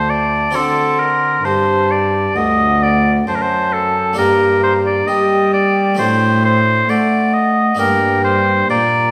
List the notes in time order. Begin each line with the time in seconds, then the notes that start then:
Already playing: D2 A3 D4 F#4 C5 A5
0.10 D5
0.51 C4 D4 F#4
0.55 D3 A4 C6
1.00 A#4
1.45 G2 C5 A5
1.91 D5
2.36 D2 D#5 F#5
2.83 D5
3.27 F#2 C5 A5
3.35 A#4
3.42 C5
3.73 A4
4.13 A#3 D4 G4
4.18 G2 A#4 A#5
4.63 C5
4.86 D5
5.07 G3 D#5 G5
5.54 D5
5.95 A3 D4 F#4
5.99 A2 C5
6.45 C5
6.89 A3 D5 F#5
7.34 D#5
7.75 A#3 D4 G4
7.79 G2 A#4 G5
8.24 C5
8.70 A#2 D5 A#5